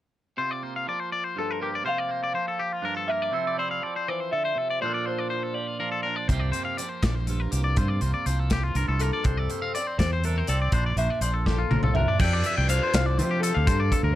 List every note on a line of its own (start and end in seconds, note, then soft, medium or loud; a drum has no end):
0.37 0.87 C3 medium
0.37 1.36 F4 medium
0.37 0.51 C5 medium
0.51 0.63 D5 medium
0.63 1.60 A#3 soft
0.63 0.76 C5 medium
0.76 0.88 F5 medium
0.87 2.33 F3 soft
0.87 1.00 D5 medium
1.00 1.12 C5 medium
1.12 1.24 D5 medium
1.24 1.37 C5 medium
1.36 1.83 G2 medium
1.36 1.84 F4 medium
1.36 1.51 A4 medium
1.36 1.61 A4 medium
1.51 1.62 A#4 medium
1.61 2.07 A#3 soft
1.61 1.74 G4 medium
1.61 1.68 A#4 medium
1.75 1.85 D5 medium
1.83 2.34 C3 medium
1.83 2.82 F4 medium
1.83 1.98 C5 medium
1.87 3.08 F5 medium
1.98 2.11 D5 medium
2.09 3.06 A#3 soft
2.09 2.23 C5 medium
2.24 2.35 D5 medium
2.33 3.32 F3 medium
2.33 2.47 C5 medium
2.48 2.60 A4 medium
2.59 2.73 G4 medium
2.73 2.85 F4 medium
2.82 3.29 G2 medium
2.82 2.95 D4 soft
2.82 2.96 A#4 medium
2.95 3.33 F4 soft
2.95 3.10 A4 medium
3.08 3.32 A#3 medium
3.08 3.22 A#4 medium
3.08 3.58 E5 medium
3.22 3.34 D5 medium
3.32 3.82 C3 medium
3.32 3.81 F3 medium
3.32 3.55 C4 medium
3.32 4.78 E4 medium
3.32 4.79 A4 medium
3.32 3.46 C5 medium
3.47 3.59 D5 medium
3.56 4.77 C4 soft
3.56 3.71 C5 medium
3.56 4.09 D5 medium
3.71 3.83 F5 medium
3.82 4.83 F3 medium
3.82 3.95 D5 medium
3.96 4.08 C5 medium
4.08 4.32 E3 medium
4.08 4.33 C5 medium
4.08 4.20 D5 medium
4.20 4.32 C5 medium
4.31 4.55 D3 medium
4.31 4.45 A4 medium
4.31 4.80 E5 medium
4.45 4.58 C5 medium
4.55 4.81 C3 medium
4.55 4.70 A4 medium
4.70 4.81 D5 medium
4.81 6.27 A#2 medium
4.81 5.31 F3 medium
4.81 5.06 D4 medium
4.81 5.80 F4 medium
4.81 4.94 C5 medium
4.81 5.06 D5 medium
4.86 6.28 A4 medium
4.94 5.06 D5 medium
5.06 6.04 D4 medium
5.06 5.18 C5 medium
5.06 5.57 C5 medium
5.18 5.30 D5 medium
5.30 5.80 F3 soft
5.30 5.43 C5 medium
5.43 5.54 A4 medium
5.54 5.67 G4 medium
5.54 6.06 D5 medium
5.67 5.79 F4 medium
5.80 6.29 F3 medium
5.80 6.31 F4 medium
5.80 5.91 A#4 medium
5.92 6.03 A4 medium
6.03 6.27 D4 soft
6.03 6.16 A#4 medium
6.16 6.28 D5 medium
6.28 6.50 C2 medium
6.28 6.79 C3 medium
6.28 6.78 F3 medium
6.28 6.55 A#3 soft
6.28 7.29 F4 medium
6.28 6.39 C5 medium
6.28 kick medium
6.28 closed hi-hat medium
6.32 9.27 G4 medium
6.39 6.52 D5 medium
6.52 7.51 A#3 soft
6.52 6.64 C5 medium
6.52 closed hi-hat medium
6.65 6.77 F5 medium
6.77 8.26 F3 soft
6.77 6.89 D5 medium
6.77 closed hi-hat medium
6.89 7.02 C5 medium
7.02 7.46 A#1 medium
7.02 7.15 D5 medium
7.02 kick medium
7.02 snare medium
7.02 closed hi-hat medium
7.15 7.27 C5 medium
7.27 7.75 G2 soft
7.27 7.78 F4 soft
7.27 7.40 A4 medium
7.27 closed hi-hat medium
7.40 7.51 A#4 medium
7.51 7.74 C2 medium
7.51 8.01 A#3 medium
7.51 7.64 G4 medium
7.51 closed hi-hat soft
7.64 7.77 D5 medium
7.76 7.98 G2 medium
7.76 8.26 C3 medium
7.76 8.76 F4 medium
7.76 7.88 C5 medium
7.76 kick loud
7.76 closed hi-hat medium
7.88 8.01 D5 medium
8.01 8.13 C2 medium
8.01 8.98 A#3 soft
8.01 8.13 C5 medium
8.01 closed hi-hat medium
8.14 8.26 D5 medium
8.26 8.69 C2 medium
8.26 10.39 F3 medium
8.26 8.39 C5 medium
8.26 closed hi-hat medium
8.39 8.51 A4 medium
8.50 8.63 G4 medium
8.50 kick medium
8.50 snare medium
8.50 closed hi-hat medium
8.63 8.76 F4 medium
8.75 8.86 C2 medium
8.75 9.22 G2 medium
8.75 9.23 F4 medium
8.75 8.88 A#4 medium
8.75 closed hi-hat soft
8.88 9.10 C2 medium
8.88 9.01 A4 medium
9.00 9.25 A#3 medium
9.00 9.76 A4 medium
9.00 9.13 A#4 medium
9.00 closed hi-hat medium
9.13 9.26 D5 medium
9.23 9.46 C2 medium
9.23 9.73 C3 medium
9.23 9.38 D4 soft
9.23 9.37 C5 medium
9.23 kick loud
9.23 closed hi-hat medium
9.37 10.24 E4 soft
9.37 9.51 D5 medium
9.50 9.62 A#3 soft
9.50 9.62 C5 medium
9.50 closed hi-hat medium
9.62 10.48 C4 soft
9.62 9.74 F5 medium
9.75 9.87 D5 medium
9.75 10.00 D5 medium
9.75 closed hi-hat medium
9.87 9.99 C5 medium
9.98 10.42 E2 medium
9.98 10.24 C5 medium
9.98 10.12 D5 medium
9.98 kick medium
9.98 snare medium
9.98 closed hi-hat medium
10.13 10.25 C5 medium
10.24 10.73 C3 medium
10.24 10.36 D4 soft
10.24 10.38 A4 medium
10.24 10.50 A#4 medium
10.24 closed hi-hat medium
10.36 10.72 E4 soft
10.36 10.49 C5 medium
10.47 10.70 C2 medium
10.47 10.71 C4 soft
10.47 10.61 A4 medium
10.47 10.97 D5 medium
10.47 closed hi-hat medium
10.62 10.73 D5 medium
10.72 10.94 A#1 medium
10.72 12.18 A#2 medium
10.72 10.86 D4 medium
10.72 10.85 C5 medium
10.72 kick loud
10.72 closed hi-hat medium
10.86 11.72 F4 soft
10.86 10.98 D5 medium
10.96 11.08 A#1 medium
10.96 11.96 D4 soft
10.96 11.10 C5 medium
10.96 11.22 E5 medium
10.96 closed hi-hat medium
11.10 11.21 D5 medium
11.21 11.64 A#1 medium
11.21 11.71 F3 soft
11.21 11.34 C5 medium
11.21 11.29 D5 medium
11.21 closed hi-hat medium
11.34 11.46 A4 medium
11.46 11.59 G4 medium
11.46 11.98 A4 medium
11.46 kick medium
11.46 snare soft
11.58 11.71 F4 medium
11.71 11.82 A#1 medium
11.71 12.18 F3 medium
11.71 12.18 F4 medium
11.71 11.83 A#4 medium
11.71 high tom medium
11.82 12.04 C2 medium
11.82 11.96 A4 medium
11.82 mid tom medium
11.94 12.08 A#4 medium
11.94 12.18 E5 medium
11.94 mid tom medium
11.98 12.19 D4 medium
12.08 12.20 D5 medium
12.19 12.42 F2 medium
12.19 13.68 F2 medium
12.19 12.70 D4 medium
12.19 13.19 G4 medium
12.19 12.70 D5 medium
12.19 12.33 G5 medium
12.19 kick loud
12.19 crash loud
12.24 13.72 A4 medium
12.33 12.45 D5 medium
12.44 12.57 E5 medium
12.44 closed hi-hat medium
12.58 12.79 C2 medium
12.58 12.69 G5 medium
12.69 14.15 F3 medium
12.69 13.65 D4 medium
12.69 13.40 C5 medium
12.69 12.82 F5 medium
12.69 closed hi-hat medium
12.83 12.95 C5 medium
12.94 13.20 C2 medium
12.94 13.06 F5 medium
12.94 snare loud
12.94 closed hi-hat medium
13.06 13.18 D5 medium
13.18 13.68 C3 medium
13.18 13.51 F3 medium
13.18 13.45 G4 medium
13.18 13.31 C5 medium
13.18 closed hi-hat medium
13.31 13.43 G4 medium
13.40 14.11 A4 medium
13.40 13.55 A4 medium
13.40 closed hi-hat medium
13.45 13.69 G4 medium
13.55 13.67 D2 medium
13.55 13.67 F5 medium
13.67 13.89 G2 medium
13.67 14.15 G2 medium
13.67 14.15 A#3 medium
13.67 14.15 F4 medium
13.67 13.80 C5 medium
13.67 kick loud
13.67 closed hi-hat loud
13.80 13.92 D5 medium
13.92 14.04 A4 medium
13.92 kick medium
13.92 closed hi-hat medium
14.03 14.15 D2 medium
14.03 14.15 A#4 medium